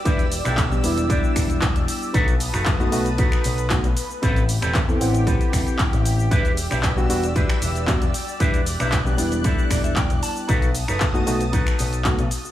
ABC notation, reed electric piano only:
X:1
M:4/4
L:1/16
Q:1/4=115
K:Em
V:1 name="Reed electric piano"
z4 z [G,B,DG] [G,B,DE]8- [G,B,DE]2 | z4 z [A,B,^DF] [A,B,DF] z4 z [A,B,DF] z3 | z4 z [B,CEA] [CEf]8- [CEf]2 | z4 z [G,B,DF] [G,B,DF] z4 z [G,B,DF] z3 |
z4 z [G,B,DG] [G,B,DE]8- [G,B,DE]2 | z4 z [A,B,^DF] [A,B,DF] z4 z [A,B,DF] z3 |]